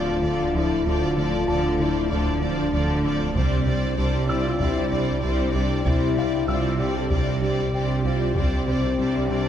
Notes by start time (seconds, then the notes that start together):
Already playing: D1 D2 D3 F3 A3 D4 F4 A4 D5 C6
0.23 D2 D3 F3 A4 D5
0.54 D2 F3 E4 A4 D5
0.85 D2 D3 F3 F4 A4 D5
1.17 D3 F3 A3 A4 D5
1.48 D2 D3 F3 A4 D5 A5
1.79 D3 F3 E4 A4 D5
2.10 D2 D3 F3 D4 A4 D5
2.41 D2 F3 D4 A4 D5
2.73 D2 D3 F3 A4 D5
3.04 D2 F3 A4 D5
3.34 C2 C3 G3 C4 D4 G4 C5 D5, taiko
3.66 C3 G3 C4 C5 D5
3.97 C2 C3 G3 D4 C5 D5
4.28 C3 G3 E4 C5 D5 E6
4.45 F4
4.60 C2 C3 G3 E4 C5 D5, taiko
4.90 C2 G3 D4 C5 D5
5.22 C2 C3 G3 C5 D5
5.54 C2 G3 D4 C5 D5
5.85 C2 C3 G3 E4 C5 D5, taiko
6.17 C3 G3 C4 C5 D5 F5
6.48 C2 C3 G3 F4 C5 D5 E5 E6
6.79 C3 G3 G4 C5 D5
6.96 A4
7.10 C2 C3 G3 G4 C5 D5, taiko
7.42 C2 G3 D4 C5 D5
7.73 C2 C3 G3 C5 D5 G5
8.04 C2 G3 F4 C5 D5
8.35 C2 C3 G3 D4 G4 C5 D5, taiko
8.66 C3 G3 C4 C5 D5
8.98 C2 C3 G3 C5 D5
9.28 C3 G3 D4 C5 D5